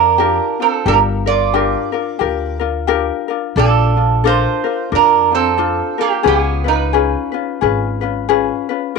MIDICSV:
0, 0, Header, 1, 4, 480
1, 0, Start_track
1, 0, Tempo, 675676
1, 612, Time_signature, 4, 2, 24, 8
1, 6386, End_track
2, 0, Start_track
2, 0, Title_t, "Resonator guitar played with a steel bar"
2, 0, Program_c, 0, 25
2, 0, Note_on_c, 0, 62, 65
2, 0, Note_on_c, 0, 70, 79
2, 394, Note_off_c, 0, 62, 0
2, 435, Note_off_c, 0, 70, 0
2, 440, Note_on_c, 0, 60, 57
2, 443, Note_on_c, 0, 69, 70
2, 612, Note_off_c, 0, 60, 0
2, 612, Note_off_c, 0, 69, 0
2, 625, Note_on_c, 0, 70, 87
2, 627, Note_on_c, 0, 62, 62
2, 700, Note_off_c, 0, 70, 0
2, 701, Note_off_c, 0, 62, 0
2, 905, Note_on_c, 0, 74, 81
2, 912, Note_on_c, 0, 65, 64
2, 1831, Note_off_c, 0, 74, 0
2, 1835, Note_off_c, 0, 65, 0
2, 2542, Note_on_c, 0, 62, 68
2, 2553, Note_on_c, 0, 69, 93
2, 2988, Note_off_c, 0, 62, 0
2, 3033, Note_on_c, 0, 65, 70
2, 3036, Note_off_c, 0, 69, 0
2, 3036, Note_on_c, 0, 72, 88
2, 3474, Note_off_c, 0, 65, 0
2, 3475, Note_off_c, 0, 72, 0
2, 3517, Note_on_c, 0, 62, 72
2, 3523, Note_on_c, 0, 70, 87
2, 3769, Note_off_c, 0, 62, 0
2, 3798, Note_off_c, 0, 70, 0
2, 3798, Note_on_c, 0, 60, 67
2, 3801, Note_on_c, 0, 69, 86
2, 4238, Note_off_c, 0, 60, 0
2, 4268, Note_on_c, 0, 67, 71
2, 4276, Note_on_c, 0, 58, 55
2, 4282, Note_off_c, 0, 69, 0
2, 4449, Note_off_c, 0, 58, 0
2, 4454, Note_off_c, 0, 67, 0
2, 4457, Note_on_c, 0, 67, 84
2, 4462, Note_on_c, 0, 59, 67
2, 4535, Note_off_c, 0, 67, 0
2, 4535, Note_on_c, 0, 68, 84
2, 4721, Note_off_c, 0, 59, 0
2, 4746, Note_off_c, 0, 68, 0
2, 4746, Note_on_c, 0, 71, 73
2, 4747, Note_on_c, 0, 63, 58
2, 5672, Note_off_c, 0, 71, 0
2, 5673, Note_off_c, 0, 63, 0
2, 6386, End_track
3, 0, Start_track
3, 0, Title_t, "Ukulele"
3, 0, Program_c, 1, 24
3, 0, Note_on_c, 1, 62, 38
3, 0, Note_on_c, 1, 65, 43
3, 0, Note_on_c, 1, 70, 52
3, 128, Note_on_c, 1, 67, 67
3, 131, Note_off_c, 1, 62, 0
3, 131, Note_off_c, 1, 70, 0
3, 132, Note_off_c, 1, 65, 0
3, 139, Note_on_c, 1, 62, 67
3, 139, Note_on_c, 1, 70, 77
3, 141, Note_on_c, 1, 65, 76
3, 414, Note_off_c, 1, 67, 0
3, 418, Note_off_c, 1, 65, 0
3, 420, Note_off_c, 1, 62, 0
3, 420, Note_off_c, 1, 70, 0
3, 426, Note_on_c, 1, 65, 43
3, 432, Note_on_c, 1, 62, 38
3, 607, Note_off_c, 1, 62, 0
3, 608, Note_off_c, 1, 65, 0
3, 610, Note_on_c, 1, 67, 66
3, 616, Note_on_c, 1, 62, 72
3, 616, Note_on_c, 1, 65, 73
3, 626, Note_on_c, 1, 70, 70
3, 887, Note_off_c, 1, 70, 0
3, 895, Note_off_c, 1, 67, 0
3, 895, Note_on_c, 1, 70, 50
3, 898, Note_off_c, 1, 62, 0
3, 898, Note_off_c, 1, 65, 0
3, 905, Note_on_c, 1, 65, 43
3, 907, Note_on_c, 1, 62, 38
3, 1084, Note_off_c, 1, 62, 0
3, 1086, Note_off_c, 1, 65, 0
3, 1091, Note_on_c, 1, 67, 78
3, 1092, Note_off_c, 1, 70, 0
3, 1093, Note_on_c, 1, 62, 74
3, 1095, Note_on_c, 1, 65, 78
3, 1103, Note_on_c, 1, 70, 75
3, 1357, Note_off_c, 1, 70, 0
3, 1365, Note_off_c, 1, 65, 0
3, 1365, Note_on_c, 1, 70, 48
3, 1370, Note_off_c, 1, 62, 0
3, 1373, Note_on_c, 1, 65, 42
3, 1375, Note_off_c, 1, 67, 0
3, 1378, Note_on_c, 1, 62, 40
3, 1551, Note_off_c, 1, 62, 0
3, 1555, Note_off_c, 1, 65, 0
3, 1556, Note_on_c, 1, 67, 69
3, 1559, Note_on_c, 1, 62, 59
3, 1560, Note_off_c, 1, 70, 0
3, 1564, Note_on_c, 1, 65, 63
3, 1568, Note_on_c, 1, 70, 71
3, 1835, Note_off_c, 1, 70, 0
3, 1844, Note_off_c, 1, 65, 0
3, 1844, Note_on_c, 1, 70, 59
3, 1846, Note_off_c, 1, 62, 0
3, 1847, Note_off_c, 1, 67, 0
3, 1852, Note_on_c, 1, 65, 54
3, 1855, Note_on_c, 1, 62, 47
3, 2037, Note_off_c, 1, 62, 0
3, 2039, Note_off_c, 1, 65, 0
3, 2040, Note_off_c, 1, 70, 0
3, 2041, Note_on_c, 1, 67, 76
3, 2045, Note_on_c, 1, 62, 80
3, 2048, Note_on_c, 1, 65, 93
3, 2049, Note_on_c, 1, 70, 93
3, 2322, Note_off_c, 1, 70, 0
3, 2330, Note_off_c, 1, 67, 0
3, 2330, Note_on_c, 1, 70, 53
3, 2332, Note_off_c, 1, 62, 0
3, 2333, Note_off_c, 1, 65, 0
3, 2343, Note_on_c, 1, 65, 49
3, 2347, Note_on_c, 1, 62, 44
3, 2529, Note_off_c, 1, 62, 0
3, 2529, Note_off_c, 1, 70, 0
3, 2534, Note_off_c, 1, 65, 0
3, 2535, Note_on_c, 1, 69, 79
3, 2537, Note_on_c, 1, 62, 74
3, 2542, Note_on_c, 1, 65, 73
3, 2810, Note_off_c, 1, 65, 0
3, 2816, Note_off_c, 1, 62, 0
3, 2817, Note_off_c, 1, 69, 0
3, 2818, Note_on_c, 1, 65, 45
3, 2825, Note_on_c, 1, 62, 36
3, 3010, Note_off_c, 1, 62, 0
3, 3011, Note_on_c, 1, 69, 67
3, 3013, Note_off_c, 1, 65, 0
3, 3019, Note_on_c, 1, 62, 73
3, 3023, Note_on_c, 1, 70, 81
3, 3025, Note_on_c, 1, 65, 77
3, 3287, Note_off_c, 1, 70, 0
3, 3292, Note_off_c, 1, 69, 0
3, 3295, Note_on_c, 1, 70, 49
3, 3297, Note_off_c, 1, 65, 0
3, 3299, Note_off_c, 1, 62, 0
3, 3305, Note_on_c, 1, 65, 42
3, 3312, Note_on_c, 1, 62, 35
3, 3485, Note_off_c, 1, 62, 0
3, 3486, Note_off_c, 1, 65, 0
3, 3489, Note_off_c, 1, 70, 0
3, 3494, Note_on_c, 1, 62, 59
3, 3494, Note_on_c, 1, 65, 58
3, 3498, Note_on_c, 1, 70, 59
3, 3768, Note_off_c, 1, 65, 0
3, 3776, Note_off_c, 1, 62, 0
3, 3776, Note_on_c, 1, 65, 43
3, 3778, Note_off_c, 1, 70, 0
3, 3784, Note_on_c, 1, 62, 43
3, 3958, Note_off_c, 1, 62, 0
3, 3962, Note_off_c, 1, 65, 0
3, 3962, Note_on_c, 1, 69, 72
3, 3966, Note_on_c, 1, 62, 70
3, 3970, Note_on_c, 1, 65, 75
3, 4245, Note_off_c, 1, 65, 0
3, 4245, Note_off_c, 1, 69, 0
3, 4248, Note_on_c, 1, 70, 49
3, 4249, Note_off_c, 1, 62, 0
3, 4254, Note_on_c, 1, 65, 42
3, 4257, Note_on_c, 1, 62, 39
3, 4426, Note_off_c, 1, 65, 0
3, 4428, Note_on_c, 1, 68, 70
3, 4429, Note_off_c, 1, 62, 0
3, 4432, Note_off_c, 1, 70, 0
3, 4432, Note_on_c, 1, 61, 73
3, 4435, Note_on_c, 1, 65, 70
3, 4435, Note_on_c, 1, 71, 69
3, 4709, Note_off_c, 1, 71, 0
3, 4718, Note_off_c, 1, 65, 0
3, 4718, Note_on_c, 1, 71, 42
3, 4723, Note_off_c, 1, 61, 0
3, 4723, Note_off_c, 1, 68, 0
3, 4726, Note_on_c, 1, 65, 48
3, 4732, Note_on_c, 1, 61, 39
3, 4921, Note_off_c, 1, 61, 0
3, 4923, Note_off_c, 1, 71, 0
3, 4923, Note_on_c, 1, 68, 69
3, 4925, Note_off_c, 1, 65, 0
3, 4929, Note_on_c, 1, 61, 74
3, 4931, Note_on_c, 1, 71, 71
3, 4933, Note_on_c, 1, 65, 73
3, 5190, Note_off_c, 1, 71, 0
3, 5199, Note_on_c, 1, 71, 47
3, 5205, Note_off_c, 1, 65, 0
3, 5207, Note_off_c, 1, 61, 0
3, 5211, Note_off_c, 1, 68, 0
3, 5213, Note_on_c, 1, 65, 46
3, 5215, Note_on_c, 1, 61, 39
3, 5401, Note_off_c, 1, 61, 0
3, 5403, Note_off_c, 1, 71, 0
3, 5405, Note_off_c, 1, 65, 0
3, 5406, Note_on_c, 1, 68, 57
3, 5410, Note_on_c, 1, 61, 62
3, 5414, Note_on_c, 1, 65, 64
3, 5419, Note_on_c, 1, 71, 63
3, 5682, Note_off_c, 1, 71, 0
3, 5689, Note_off_c, 1, 65, 0
3, 5690, Note_on_c, 1, 71, 52
3, 5693, Note_off_c, 1, 68, 0
3, 5694, Note_off_c, 1, 61, 0
3, 5698, Note_on_c, 1, 65, 45
3, 5707, Note_on_c, 1, 61, 46
3, 5884, Note_off_c, 1, 61, 0
3, 5885, Note_off_c, 1, 65, 0
3, 5886, Note_off_c, 1, 71, 0
3, 5887, Note_on_c, 1, 68, 82
3, 5892, Note_on_c, 1, 61, 88
3, 5894, Note_on_c, 1, 65, 77
3, 5894, Note_on_c, 1, 71, 88
3, 6165, Note_off_c, 1, 71, 0
3, 6170, Note_off_c, 1, 65, 0
3, 6173, Note_off_c, 1, 68, 0
3, 6173, Note_on_c, 1, 71, 51
3, 6176, Note_off_c, 1, 61, 0
3, 6178, Note_on_c, 1, 65, 47
3, 6186, Note_on_c, 1, 61, 45
3, 6356, Note_off_c, 1, 65, 0
3, 6361, Note_off_c, 1, 61, 0
3, 6361, Note_on_c, 1, 70, 67
3, 6364, Note_on_c, 1, 65, 71
3, 6371, Note_off_c, 1, 71, 0
3, 6386, Note_off_c, 1, 65, 0
3, 6386, Note_off_c, 1, 70, 0
3, 6386, End_track
4, 0, Start_track
4, 0, Title_t, "Upright bass"
4, 0, Program_c, 2, 32
4, 0, Note_on_c, 2, 41, 85
4, 269, Note_off_c, 2, 41, 0
4, 608, Note_on_c, 2, 31, 100
4, 1233, Note_off_c, 2, 31, 0
4, 1569, Note_on_c, 2, 38, 82
4, 2194, Note_off_c, 2, 38, 0
4, 2527, Note_on_c, 2, 34, 100
4, 3152, Note_off_c, 2, 34, 0
4, 3495, Note_on_c, 2, 41, 83
4, 4117, Note_off_c, 2, 41, 0
4, 4444, Note_on_c, 2, 37, 93
4, 5071, Note_off_c, 2, 37, 0
4, 5414, Note_on_c, 2, 32, 84
4, 6038, Note_off_c, 2, 32, 0
4, 6386, End_track
0, 0, End_of_file